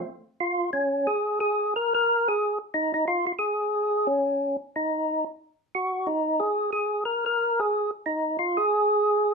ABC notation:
X:1
M:4/4
L:1/8
Q:"Swing" 1/4=180
K:Abmix
V:1 name="Tonewheel organ"
z2 F2 D2 A2 | A2 B B2 A2 z | E E F F A4 | D3 z E3 z |
z2 G2 E2 A2 | A2 B B2 A2 z | E2 F A4- A |]